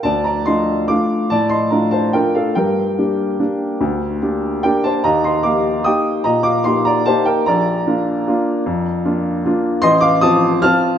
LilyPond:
\new Staff \with { instrumentName = "Upright piano" } { \time 3/4 \key d \phrygian \tempo 4 = 147 << { <d'' a''>8 <d'' bes''>8 <ees'' c'''>4 <f'' d'''>4 | <d'' a''>8 <ees'' c'''>8 <d'' bes''>8 <c'' a''>8 <bes' g''>8 <a' f''>8 | <bes' g''>2.~ | <bes' g''>4. r8 <bes' g''>8 <c'' a''>8 |
<ees'' bes''>8 <ees'' c'''>8 <f'' d'''>4 <g'' ees'''>4 | <ees'' bes''>8 <f'' d'''>8 <ees'' c'''>8 <d'' bes''>8 <c'' a''>8 <bes' g''>8 | <d'' bes''>2.~ | <d'' bes''>4. r4. |
<ees'' c'''>8 <f'' d'''>8 <a'' ees'''>4 <a'' f'''>4 | } \\ { d,4 <a d' f'>4 <a d' f'>4 | a,4 <a d' f'>4 <a d' f'>4 | g,4 <bes d' g'>4 <bes d' g'>4 | d,4 <bes d' g'>4 <bes d' g'>4 |
ees,4 <bes ees' g'>4 <bes ees' g'>4 | bes,4 <bes ees' g'>4 <bes ees' g'>4 | bes,,4 <bes d' f'>4 <bes d' f'>4 | f,4 <bes d' f'>4 <bes d' f'>4 |
a,,4 <f c' f'>4 <f c' f'>4 | } >> }